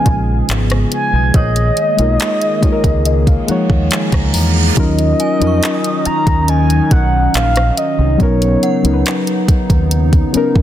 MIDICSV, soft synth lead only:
0, 0, Header, 1, 2, 480
1, 0, Start_track
1, 0, Key_signature, -6, "minor"
1, 0, Tempo, 857143
1, 751, Time_signature, 4, 2, 24, 8
1, 5948, End_track
2, 0, Start_track
2, 0, Title_t, "Soft synth lead"
2, 0, Program_c, 0, 80
2, 0, Note_on_c, 0, 80, 96
2, 274, Note_off_c, 0, 80, 0
2, 518, Note_on_c, 0, 80, 114
2, 756, Note_on_c, 0, 75, 121
2, 765, Note_off_c, 0, 80, 0
2, 2194, Note_off_c, 0, 75, 0
2, 2675, Note_on_c, 0, 75, 108
2, 3393, Note_on_c, 0, 82, 113
2, 3401, Note_off_c, 0, 75, 0
2, 3598, Note_off_c, 0, 82, 0
2, 3598, Note_on_c, 0, 82, 83
2, 3636, Note_on_c, 0, 80, 111
2, 3644, Note_off_c, 0, 82, 0
2, 3874, Note_on_c, 0, 78, 105
2, 3883, Note_off_c, 0, 80, 0
2, 4113, Note_off_c, 0, 78, 0
2, 4117, Note_on_c, 0, 77, 106
2, 4356, Note_on_c, 0, 75, 94
2, 4365, Note_off_c, 0, 77, 0
2, 4598, Note_on_c, 0, 73, 90
2, 4607, Note_off_c, 0, 75, 0
2, 5075, Note_off_c, 0, 73, 0
2, 5948, End_track
0, 0, End_of_file